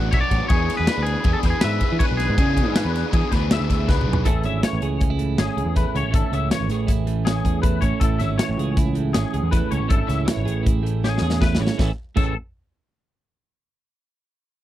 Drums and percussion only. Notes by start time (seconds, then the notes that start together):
0.13 kick, ride
0.31 kick, ride
0.50 kick, ride
0.70 snare, ride
0.87 snare, ride
1.06 ride
1.24 kick, ride
1.43 kick, snare, ride
1.61 snare, ride
1.81 kick, ride
2.00 kick, ride
2.20 snare, ride
2.38 kick, ride
2.57 kick, ride
2.76 snare, ride
2.95 snare, ride
3.13 kick, ride
3.32 kick, snare, ride
3.51 snare, ride
3.70 kick, snare, ride
3.89 kick, snare
4.01 mid tom
4.13 floor tom
4.25 kick, closed hi-hat
4.43 closed hi-hat
4.63 snare, closed hi-hat
4.82 closed hi-hat
5.01 kick, closed hi-hat
5.19 closed hi-hat
5.38 snare, closed hi-hat
5.58 closed hi-hat
5.76 kick, snare, closed hi-hat
5.96 closed hi-hat
6.14 kick, closed hi-hat
6.33 closed hi-hat
6.51 snare, closed hi-hat
6.70 snare, closed hi-hat
6.88 kick, snare, closed hi-hat
7.07 closed hi-hat
7.27 snare, closed hi-hat
7.45 kick, closed hi-hat
7.63 kick, closed hi-hat
7.82 kick, closed hi-hat
8.01 kick, closed hi-hat
8.20 snare, closed hi-hat
8.39 snare, closed hi-hat
8.59 closed hi-hat
8.77 kick, snare, closed hi-hat
8.95 closed hi-hat
9.14 snare, closed hi-hat
9.34 closed hi-hat
9.52 kick, snare, closed hi-hat
9.72 closed hi-hat
9.90 kick, closed hi-hat
10.09 snare, closed hi-hat
10.28 snare, closed hi-hat
10.48 closed hi-hat
10.66 kick, closed hi-hat
10.86 closed hi-hat
11.04 snare
11.18 snare
11.30 snare
11.42 kick, snare
11.55 snare
11.67 snare
11.79 kick, snare
12.17 kick, crash